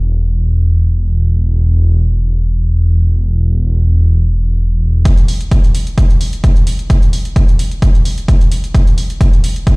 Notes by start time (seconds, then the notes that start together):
Already playing: E1
5.05 kick, closed hi-hat
5.18 closed hi-hat
5.28 open hi-hat
5.41 closed hi-hat
5.51 kick, closed hi-hat
5.64 closed hi-hat
5.75 open hi-hat
5.87 closed hi-hat
5.98 kick, closed hi-hat
6.10 closed hi-hat
6.21 open hi-hat
6.33 closed hi-hat
6.44 kick, closed hi-hat
6.56 closed hi-hat
6.67 open hi-hat
6.79 closed hi-hat
6.90 kick, closed hi-hat
7.02 closed hi-hat
7.13 open hi-hat
7.25 closed hi-hat
7.36 kick, closed hi-hat
7.48 closed hi-hat
7.59 open hi-hat
7.71 closed hi-hat
7.82 kick, closed hi-hat
7.95 closed hi-hat
8.05 open hi-hat
8.18 closed hi-hat
8.28 kick, closed hi-hat
8.41 closed hi-hat
8.52 open hi-hat
8.64 closed hi-hat
8.75 kick, closed hi-hat
8.87 closed hi-hat
8.98 open hi-hat
9.10 closed hi-hat
9.21 kick, closed hi-hat
9.33 closed hi-hat
9.44 open hi-hat
9.56 closed hi-hat
9.67 kick, closed hi-hat